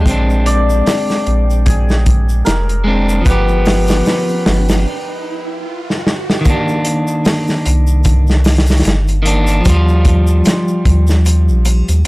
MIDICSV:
0, 0, Header, 1, 7, 480
1, 0, Start_track
1, 0, Key_signature, -3, "minor"
1, 0, Tempo, 800000
1, 34, Time_signature, 4, 2, 24, 8
1, 7243, End_track
2, 0, Start_track
2, 0, Title_t, "Synth drone"
2, 0, Program_c, 0, 95
2, 0, Note_on_c, 0, 79, 84
2, 2906, Note_off_c, 0, 79, 0
2, 7243, End_track
3, 0, Start_track
3, 0, Title_t, "Hammered dulcimer"
3, 0, Program_c, 1, 15
3, 277, Note_on_c, 1, 74, 105
3, 993, Note_on_c, 1, 68, 97
3, 1469, Note_on_c, 1, 70, 89
3, 1754, Note_off_c, 1, 74, 0
3, 1955, Note_on_c, 1, 71, 90
3, 1991, Note_off_c, 1, 70, 0
3, 2812, Note_off_c, 1, 68, 0
3, 3595, Note_off_c, 1, 71, 0
3, 7243, End_track
4, 0, Start_track
4, 0, Title_t, "Clean electric guitar"
4, 0, Program_c, 2, 27
4, 8, Note_on_c, 2, 56, 74
4, 36, Note_on_c, 2, 60, 76
4, 65, Note_on_c, 2, 62, 87
4, 1676, Note_off_c, 2, 56, 0
4, 1690, Note_off_c, 2, 60, 0
4, 1705, Note_off_c, 2, 62, 0
4, 1705, Note_on_c, 2, 56, 94
4, 1720, Note_on_c, 2, 60, 86
4, 1732, Note_on_c, 2, 62, 101
4, 1925, Note_off_c, 2, 56, 0
4, 1928, Note_on_c, 2, 53, 81
4, 1932, Note_off_c, 2, 60, 0
4, 1938, Note_off_c, 2, 62, 0
4, 1954, Note_on_c, 2, 59, 70
4, 1982, Note_on_c, 2, 67, 93
4, 2901, Note_off_c, 2, 53, 0
4, 2914, Note_off_c, 2, 59, 0
4, 2928, Note_off_c, 2, 67, 0
4, 3845, Note_on_c, 2, 51, 77
4, 3872, Note_on_c, 2, 58, 70
4, 3898, Note_on_c, 2, 62, 88
4, 5515, Note_off_c, 2, 51, 0
4, 5528, Note_off_c, 2, 58, 0
4, 5535, Note_on_c, 2, 51, 94
4, 5541, Note_off_c, 2, 62, 0
4, 5551, Note_on_c, 2, 58, 90
4, 5563, Note_on_c, 2, 62, 101
4, 5760, Note_off_c, 2, 51, 0
4, 5762, Note_on_c, 2, 53, 80
4, 5768, Note_off_c, 2, 58, 0
4, 5774, Note_off_c, 2, 62, 0
4, 5789, Note_on_c, 2, 55, 75
4, 5817, Note_on_c, 2, 65, 87
4, 7193, Note_off_c, 2, 53, 0
4, 7207, Note_off_c, 2, 55, 0
4, 7221, Note_off_c, 2, 65, 0
4, 7243, End_track
5, 0, Start_track
5, 0, Title_t, "Sub bass"
5, 0, Program_c, 3, 38
5, 37, Note_on_c, 3, 34, 89
5, 496, Note_off_c, 3, 34, 0
5, 760, Note_on_c, 3, 34, 94
5, 1457, Note_off_c, 3, 34, 0
5, 1481, Note_on_c, 3, 29, 81
5, 1938, Note_off_c, 3, 29, 0
5, 1958, Note_on_c, 3, 31, 83
5, 2416, Note_off_c, 3, 31, 0
5, 2680, Note_on_c, 3, 31, 91
5, 2917, Note_off_c, 3, 31, 0
5, 4596, Note_on_c, 3, 36, 101
5, 5295, Note_off_c, 3, 36, 0
5, 5313, Note_on_c, 3, 31, 78
5, 5774, Note_off_c, 3, 31, 0
5, 5798, Note_on_c, 3, 39, 83
5, 6256, Note_off_c, 3, 39, 0
5, 6515, Note_on_c, 3, 39, 97
5, 6891, Note_on_c, 3, 34, 98
5, 6900, Note_off_c, 3, 39, 0
5, 7098, Note_off_c, 3, 34, 0
5, 7131, Note_on_c, 3, 39, 86
5, 7221, Note_off_c, 3, 39, 0
5, 7243, End_track
6, 0, Start_track
6, 0, Title_t, "Riser"
6, 0, Program_c, 4, 103
6, 32, Note_on_c, 4, 60, 71
6, 3873, Note_off_c, 4, 60, 0
6, 7243, End_track
7, 0, Start_track
7, 0, Title_t, "Drums"
7, 34, Note_on_c, 9, 36, 103
7, 35, Note_on_c, 9, 82, 51
7, 40, Note_on_c, 9, 42, 92
7, 94, Note_off_c, 9, 36, 0
7, 95, Note_off_c, 9, 82, 0
7, 100, Note_off_c, 9, 42, 0
7, 179, Note_on_c, 9, 82, 34
7, 239, Note_off_c, 9, 82, 0
7, 276, Note_on_c, 9, 42, 73
7, 336, Note_off_c, 9, 42, 0
7, 418, Note_on_c, 9, 82, 68
7, 478, Note_off_c, 9, 82, 0
7, 518, Note_on_c, 9, 46, 75
7, 521, Note_on_c, 9, 82, 62
7, 525, Note_on_c, 9, 38, 110
7, 578, Note_off_c, 9, 46, 0
7, 581, Note_off_c, 9, 82, 0
7, 585, Note_off_c, 9, 38, 0
7, 653, Note_on_c, 9, 82, 32
7, 661, Note_on_c, 9, 38, 44
7, 713, Note_off_c, 9, 82, 0
7, 721, Note_off_c, 9, 38, 0
7, 759, Note_on_c, 9, 42, 69
7, 819, Note_off_c, 9, 42, 0
7, 901, Note_on_c, 9, 82, 64
7, 961, Note_off_c, 9, 82, 0
7, 996, Note_on_c, 9, 42, 76
7, 999, Note_on_c, 9, 36, 102
7, 1004, Note_on_c, 9, 82, 57
7, 1056, Note_off_c, 9, 42, 0
7, 1059, Note_off_c, 9, 36, 0
7, 1064, Note_off_c, 9, 82, 0
7, 1134, Note_on_c, 9, 82, 35
7, 1141, Note_on_c, 9, 38, 53
7, 1194, Note_off_c, 9, 82, 0
7, 1201, Note_off_c, 9, 38, 0
7, 1236, Note_on_c, 9, 42, 68
7, 1239, Note_on_c, 9, 36, 93
7, 1296, Note_off_c, 9, 42, 0
7, 1299, Note_off_c, 9, 36, 0
7, 1374, Note_on_c, 9, 82, 64
7, 1434, Note_off_c, 9, 82, 0
7, 1473, Note_on_c, 9, 82, 55
7, 1478, Note_on_c, 9, 42, 89
7, 1482, Note_on_c, 9, 38, 106
7, 1533, Note_off_c, 9, 82, 0
7, 1538, Note_off_c, 9, 42, 0
7, 1542, Note_off_c, 9, 38, 0
7, 1614, Note_on_c, 9, 82, 35
7, 1616, Note_on_c, 9, 42, 45
7, 1674, Note_off_c, 9, 82, 0
7, 1676, Note_off_c, 9, 42, 0
7, 1854, Note_on_c, 9, 82, 81
7, 1914, Note_off_c, 9, 82, 0
7, 1951, Note_on_c, 9, 82, 61
7, 1955, Note_on_c, 9, 36, 114
7, 1956, Note_on_c, 9, 42, 82
7, 2011, Note_off_c, 9, 82, 0
7, 2015, Note_off_c, 9, 36, 0
7, 2016, Note_off_c, 9, 42, 0
7, 2089, Note_on_c, 9, 82, 33
7, 2149, Note_off_c, 9, 82, 0
7, 2192, Note_on_c, 9, 81, 52
7, 2195, Note_on_c, 9, 46, 74
7, 2202, Note_on_c, 9, 38, 104
7, 2252, Note_off_c, 9, 81, 0
7, 2255, Note_off_c, 9, 46, 0
7, 2262, Note_off_c, 9, 38, 0
7, 2325, Note_on_c, 9, 82, 75
7, 2329, Note_on_c, 9, 46, 74
7, 2339, Note_on_c, 9, 38, 97
7, 2385, Note_off_c, 9, 82, 0
7, 2389, Note_off_c, 9, 46, 0
7, 2399, Note_off_c, 9, 38, 0
7, 2428, Note_on_c, 9, 46, 73
7, 2434, Note_on_c, 9, 82, 63
7, 2443, Note_on_c, 9, 38, 87
7, 2488, Note_off_c, 9, 46, 0
7, 2494, Note_off_c, 9, 82, 0
7, 2503, Note_off_c, 9, 38, 0
7, 2573, Note_on_c, 9, 82, 34
7, 2633, Note_off_c, 9, 82, 0
7, 2676, Note_on_c, 9, 46, 65
7, 2677, Note_on_c, 9, 38, 109
7, 2736, Note_off_c, 9, 46, 0
7, 2737, Note_off_c, 9, 38, 0
7, 2812, Note_on_c, 9, 82, 82
7, 2813, Note_on_c, 9, 46, 73
7, 2818, Note_on_c, 9, 38, 97
7, 2872, Note_off_c, 9, 82, 0
7, 2873, Note_off_c, 9, 46, 0
7, 2878, Note_off_c, 9, 38, 0
7, 3541, Note_on_c, 9, 38, 47
7, 3601, Note_off_c, 9, 38, 0
7, 3640, Note_on_c, 9, 38, 76
7, 3700, Note_off_c, 9, 38, 0
7, 3778, Note_on_c, 9, 38, 72
7, 3838, Note_off_c, 9, 38, 0
7, 3870, Note_on_c, 9, 82, 67
7, 3873, Note_on_c, 9, 42, 76
7, 3874, Note_on_c, 9, 36, 97
7, 3930, Note_off_c, 9, 82, 0
7, 3933, Note_off_c, 9, 42, 0
7, 3934, Note_off_c, 9, 36, 0
7, 4009, Note_on_c, 9, 82, 41
7, 4069, Note_off_c, 9, 82, 0
7, 4108, Note_on_c, 9, 42, 68
7, 4168, Note_off_c, 9, 42, 0
7, 4245, Note_on_c, 9, 82, 72
7, 4305, Note_off_c, 9, 82, 0
7, 4350, Note_on_c, 9, 82, 59
7, 4351, Note_on_c, 9, 46, 74
7, 4357, Note_on_c, 9, 38, 115
7, 4410, Note_off_c, 9, 82, 0
7, 4411, Note_off_c, 9, 46, 0
7, 4417, Note_off_c, 9, 38, 0
7, 4484, Note_on_c, 9, 82, 36
7, 4493, Note_on_c, 9, 38, 44
7, 4544, Note_off_c, 9, 82, 0
7, 4553, Note_off_c, 9, 38, 0
7, 4593, Note_on_c, 9, 42, 77
7, 4653, Note_off_c, 9, 42, 0
7, 4722, Note_on_c, 9, 82, 83
7, 4782, Note_off_c, 9, 82, 0
7, 4822, Note_on_c, 9, 82, 63
7, 4829, Note_on_c, 9, 42, 73
7, 4834, Note_on_c, 9, 36, 93
7, 4882, Note_off_c, 9, 82, 0
7, 4889, Note_off_c, 9, 42, 0
7, 4894, Note_off_c, 9, 36, 0
7, 4962, Note_on_c, 9, 82, 35
7, 4978, Note_on_c, 9, 38, 53
7, 5022, Note_off_c, 9, 82, 0
7, 5038, Note_off_c, 9, 38, 0
7, 5066, Note_on_c, 9, 81, 75
7, 5070, Note_on_c, 9, 46, 70
7, 5076, Note_on_c, 9, 38, 88
7, 5126, Note_off_c, 9, 81, 0
7, 5130, Note_off_c, 9, 46, 0
7, 5136, Note_off_c, 9, 38, 0
7, 5138, Note_on_c, 9, 46, 54
7, 5150, Note_on_c, 9, 38, 84
7, 5198, Note_off_c, 9, 46, 0
7, 5199, Note_on_c, 9, 82, 76
7, 5210, Note_off_c, 9, 38, 0
7, 5215, Note_on_c, 9, 46, 53
7, 5221, Note_on_c, 9, 38, 81
7, 5259, Note_off_c, 9, 82, 0
7, 5264, Note_off_c, 9, 46, 0
7, 5264, Note_on_c, 9, 46, 63
7, 5277, Note_off_c, 9, 38, 0
7, 5277, Note_on_c, 9, 38, 75
7, 5303, Note_on_c, 9, 82, 58
7, 5310, Note_on_c, 9, 42, 83
7, 5324, Note_off_c, 9, 46, 0
7, 5326, Note_off_c, 9, 38, 0
7, 5326, Note_on_c, 9, 38, 114
7, 5363, Note_off_c, 9, 82, 0
7, 5370, Note_off_c, 9, 42, 0
7, 5386, Note_off_c, 9, 38, 0
7, 5444, Note_on_c, 9, 82, 37
7, 5451, Note_on_c, 9, 42, 42
7, 5504, Note_off_c, 9, 82, 0
7, 5511, Note_off_c, 9, 42, 0
7, 5553, Note_on_c, 9, 42, 68
7, 5613, Note_off_c, 9, 42, 0
7, 5681, Note_on_c, 9, 82, 83
7, 5690, Note_on_c, 9, 42, 40
7, 5741, Note_off_c, 9, 82, 0
7, 5750, Note_off_c, 9, 42, 0
7, 5788, Note_on_c, 9, 82, 70
7, 5792, Note_on_c, 9, 42, 89
7, 5795, Note_on_c, 9, 36, 106
7, 5848, Note_off_c, 9, 82, 0
7, 5852, Note_off_c, 9, 42, 0
7, 5855, Note_off_c, 9, 36, 0
7, 5929, Note_on_c, 9, 82, 35
7, 5989, Note_off_c, 9, 82, 0
7, 6028, Note_on_c, 9, 42, 72
7, 6032, Note_on_c, 9, 36, 91
7, 6088, Note_off_c, 9, 42, 0
7, 6092, Note_off_c, 9, 36, 0
7, 6163, Note_on_c, 9, 82, 83
7, 6223, Note_off_c, 9, 82, 0
7, 6267, Note_on_c, 9, 82, 67
7, 6273, Note_on_c, 9, 42, 77
7, 6282, Note_on_c, 9, 38, 111
7, 6327, Note_off_c, 9, 82, 0
7, 6333, Note_off_c, 9, 42, 0
7, 6342, Note_off_c, 9, 38, 0
7, 6408, Note_on_c, 9, 82, 41
7, 6468, Note_off_c, 9, 82, 0
7, 6512, Note_on_c, 9, 42, 76
7, 6513, Note_on_c, 9, 36, 106
7, 6572, Note_off_c, 9, 42, 0
7, 6573, Note_off_c, 9, 36, 0
7, 6643, Note_on_c, 9, 82, 73
7, 6657, Note_on_c, 9, 38, 51
7, 6703, Note_off_c, 9, 82, 0
7, 6717, Note_off_c, 9, 38, 0
7, 6751, Note_on_c, 9, 82, 69
7, 6755, Note_on_c, 9, 42, 75
7, 6811, Note_off_c, 9, 82, 0
7, 6815, Note_off_c, 9, 42, 0
7, 6891, Note_on_c, 9, 82, 40
7, 6951, Note_off_c, 9, 82, 0
7, 6989, Note_on_c, 9, 81, 86
7, 6992, Note_on_c, 9, 42, 72
7, 7049, Note_off_c, 9, 81, 0
7, 7052, Note_off_c, 9, 42, 0
7, 7131, Note_on_c, 9, 42, 45
7, 7131, Note_on_c, 9, 82, 75
7, 7191, Note_off_c, 9, 42, 0
7, 7191, Note_off_c, 9, 82, 0
7, 7243, End_track
0, 0, End_of_file